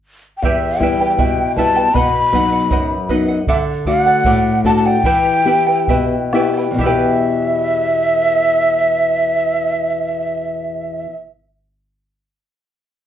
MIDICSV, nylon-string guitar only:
0, 0, Header, 1, 2, 480
1, 0, Start_track
1, 0, Key_signature, 1, "minor"
1, 0, Tempo, 761421
1, 272, Time_signature, 2, 2, 24, 8
1, 2673, Tempo, 819672
1, 3633, Tempo, 910470
1, 4113, Tempo, 950872
1, 7280, End_track
2, 0, Start_track
2, 0, Title_t, "Nylon-string guitar"
2, 0, Program_c, 0, 24
2, 267, Note_on_c, 0, 40, 61
2, 500, Note_on_c, 0, 55, 44
2, 505, Note_on_c, 0, 59, 42
2, 507, Note_on_c, 0, 64, 50
2, 734, Note_off_c, 0, 40, 0
2, 747, Note_on_c, 0, 47, 58
2, 888, Note_off_c, 0, 55, 0
2, 891, Note_off_c, 0, 59, 0
2, 892, Note_off_c, 0, 64, 0
2, 983, Note_on_c, 0, 55, 45
2, 988, Note_on_c, 0, 59, 42
2, 992, Note_on_c, 0, 64, 49
2, 1178, Note_off_c, 0, 55, 0
2, 1180, Note_off_c, 0, 59, 0
2, 1183, Note_off_c, 0, 64, 0
2, 1214, Note_off_c, 0, 47, 0
2, 1223, Note_on_c, 0, 47, 58
2, 1465, Note_on_c, 0, 54, 43
2, 1467, Note_on_c, 0, 59, 42
2, 1472, Note_on_c, 0, 63, 49
2, 1691, Note_off_c, 0, 47, 0
2, 1706, Note_on_c, 0, 42, 64
2, 1851, Note_off_c, 0, 54, 0
2, 1851, Note_off_c, 0, 59, 0
2, 1855, Note_off_c, 0, 63, 0
2, 1949, Note_on_c, 0, 54, 48
2, 1955, Note_on_c, 0, 59, 39
2, 1958, Note_on_c, 0, 63, 50
2, 2141, Note_off_c, 0, 54, 0
2, 2145, Note_off_c, 0, 59, 0
2, 2146, Note_off_c, 0, 63, 0
2, 2173, Note_off_c, 0, 42, 0
2, 2195, Note_on_c, 0, 50, 58
2, 2437, Note_on_c, 0, 57, 44
2, 2441, Note_on_c, 0, 66, 53
2, 2442, Note_on_c, 0, 62, 41
2, 2663, Note_off_c, 0, 50, 0
2, 2682, Note_on_c, 0, 45, 62
2, 2818, Note_off_c, 0, 57, 0
2, 2819, Note_off_c, 0, 62, 0
2, 2819, Note_off_c, 0, 66, 0
2, 2909, Note_on_c, 0, 57, 43
2, 2913, Note_on_c, 0, 62, 43
2, 2915, Note_on_c, 0, 66, 50
2, 3096, Note_off_c, 0, 57, 0
2, 3097, Note_off_c, 0, 62, 0
2, 3100, Note_off_c, 0, 66, 0
2, 3130, Note_off_c, 0, 45, 0
2, 3146, Note_on_c, 0, 52, 56
2, 3382, Note_on_c, 0, 59, 45
2, 3386, Note_on_c, 0, 67, 47
2, 3388, Note_on_c, 0, 64, 39
2, 3622, Note_off_c, 0, 52, 0
2, 3638, Note_on_c, 0, 47, 59
2, 3777, Note_off_c, 0, 59, 0
2, 3777, Note_off_c, 0, 67, 0
2, 3779, Note_off_c, 0, 64, 0
2, 3869, Note_on_c, 0, 59, 42
2, 3874, Note_on_c, 0, 64, 42
2, 3876, Note_on_c, 0, 67, 48
2, 4066, Note_off_c, 0, 59, 0
2, 4067, Note_off_c, 0, 64, 0
2, 4069, Note_off_c, 0, 67, 0
2, 4070, Note_on_c, 0, 40, 49
2, 4082, Note_off_c, 0, 47, 0
2, 4089, Note_on_c, 0, 47, 45
2, 4107, Note_on_c, 0, 52, 45
2, 4127, Note_on_c, 0, 59, 43
2, 4147, Note_on_c, 0, 67, 46
2, 4165, Note_on_c, 0, 71, 51
2, 6268, Note_off_c, 0, 40, 0
2, 6286, Note_off_c, 0, 47, 0
2, 6304, Note_off_c, 0, 52, 0
2, 6323, Note_off_c, 0, 59, 0
2, 6343, Note_off_c, 0, 67, 0
2, 6361, Note_off_c, 0, 71, 0
2, 7280, End_track
0, 0, End_of_file